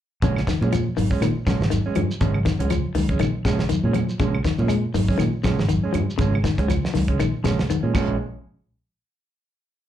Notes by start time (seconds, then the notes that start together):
0.22 A#1 C#3 F3 G#3 C#4, kick, closed hi-hat, shekere
0.36 snare, claves
0.47 D#3, kick, snare, closed hi-hat, shekere
0.61 A#2 G#3 C#4, high conga, shekere
0.72 F3, closed hi-hat, claves, shekere
0.97 G#1 D#3, open hi-hat, high conga, low conga, shekere
1.11 G#3 C#4, kick, shekere
1.21 A#2 D#3, closed hi-hat, claves, shekere
1.46 A#1 C#3 F3 G#3 C#4, kick, snare, closed hi-hat, high conga, claves, shekere
1.60 G#1, snare, shekere
1.70 D#3, closed hi-hat, high conga, shekere
1.86 G#3 C#4
1.95 G2 F3, closed hi-hat, high conga, low conga, claves, shekere
2.11 shekere
2.21 G#1 C#3 F3 G#3 C#4, kick, closed hi-hat, shekere
2.34 high conga, claves
2.45 D#3, kick, snare, closed hi-hat, shekere
2.59 C#2 G#3 C#4, closed hi-hat, high conga, shekere
2.70 F3, closed hi-hat, claves, shekere
2.85 muted fingered electric bass stroke
2.95 C#2 D#3, open hi-hat, high conga, low conga, shekere
3.09 G#3 C#4, kick, closed hi-hat, high conga, shekere
3.19 A#1 D#3, closed hi-hat, claves, shekere
3.45 A#1 C#3 F3 G#3 C#4, kick, snare, closed hi-hat, high conga, claves, shekere
3.59 snare, low conga, shekere
3.69 D#3, muted fingered electric bass stroke, closed hi-hat, high conga, shekere
3.83 A#2 G#3 C#4
3.93 F3, closed hi-hat, high conga, low conga, claves, shekere
4.09 shekere
4.20 A#1 C#3 F3 G#3 C#4, kick, closed hi-hat, shekere
4.35 claves
4.45 D#3, kick, snare, closed hi-hat, shekere
4.58 A#2 G#3 C#4, high conga, shekere
4.68 G#3, closed hi-hat, claves, shekere
4.94 G#1 D#3, open hi-hat, high conga, low conga, shekere
5.08 G#3 C#4, kick, high conga, shekere
5.18 A#2 D#3, closed hi-hat, claves, shekere
5.43 A#1 C#3 F3 G#3 C#4, kick, snare, closed hi-hat, high conga, claves, shekere
5.59 G#1, snare, low conga, shekere
5.69 D#3, closed hi-hat, high conga, shekere
5.84 G#3 C#4
5.93 G2 F3, closed hi-hat, low conga, claves, shekere
6.10 shekere
6.18 G#1 C#3 F3 G#3 C#4, kick, closed hi-hat, shekere
6.35 claves
6.44 D#3, kick, snare, closed hi-hat, shekere
6.58 C#2 G#3 C#4, kick, closed hi-hat, high conga, shekere
6.68 F3, closed hi-hat, claves, shekere
6.84 muted fingered electric bass stroke, snare
6.94 C#2 D#3, snare, open hi-hat, high conga, low conga, shekere
7.08 G#3 C#4, kick, closed hi-hat, high conga, shekere
7.19 A#1 D#3, closed hi-hat, claves, shekere
7.44 A#1 C#3 F3 G#3 C#4, snare, closed hi-hat, high conga, claves, shekere
7.59 snare, low conga, shekere
7.69 D#3, muted fingered electric bass stroke, closed hi-hat, high conga, shekere
7.83 A#2 G#3 C#4
7.94 A#1 A#2 F3 G#3 C#4, kick, crash, low conga, claves, shekere